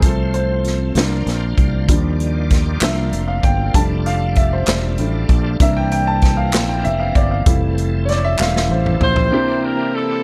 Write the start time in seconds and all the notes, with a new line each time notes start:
Already playing: F4
0.02 C2 F3 A3 C4 F4 A4 C5, kick, closed hi-hat
0.34 C5, closed hi-hat
0.64 snare, closed hi-hat
0.94 C2 F3 A#3 D4 F4 C5 D5, snare, closed hi-hat
1.26 A#1, snare, closed hi-hat
1.58 C2, kick, closed hi-hat
1.88 D#2 D#3 F3 G3 D4 F4 C5, kick, closed hi-hat
1.95 D5
2.20 closed hi-hat
2.50 kick, snare, closed hi-hat
2.80 C2 F3 A#3 C4 D4 F4 C5 E5, snare, clap, closed hi-hat
3.12 F1, closed hi-hat
3.28 F5
3.43 G1 G5, kick, closed hi-hat
3.74 F1 G3 A3 D4 F4 A4 A5, kick, closed hi-hat
4.06 F5, closed hi-hat
4.35 E5, kick, closed hi-hat
4.53 C5
4.66 E1, snare, clap, closed hi-hat
4.98 A1 G3 A3 D4, closed hi-hat
5.29 A#1, kick, closed hi-hat
5.60 C2 E3 A#3 C4 D4 A#4 E5, kick, closed hi-hat
5.77 G5
5.91 G5, closed hi-hat
6.07 A5
6.22 G5, kick, snare, closed hi-hat
6.37 F5
6.52 A#1, snare, clap, closed hi-hat
6.69 G5
6.84 F1 E5, closed hi-hat
7.00 F5
7.15 G1 D5, kick, closed hi-hat
7.31 F5
7.46 F1 E3 G3 A3 C4 E4 A4, kick, closed hi-hat
7.78 closed hi-hat
8.05 C#5 D5, closed hi-hat
8.11 snare
8.24 E5
8.39 E1 E3 G3 A3 F5, snare, clap
8.56 snare
8.70 A1 C5
8.86 mid tom
9.00 A#1 E4 G4 C5, floor tom
9.16 floor tom
9.30 C3 E3 A#3 C4 D4 E4 G4
9.63 A#4
9.94 D4 E4 A4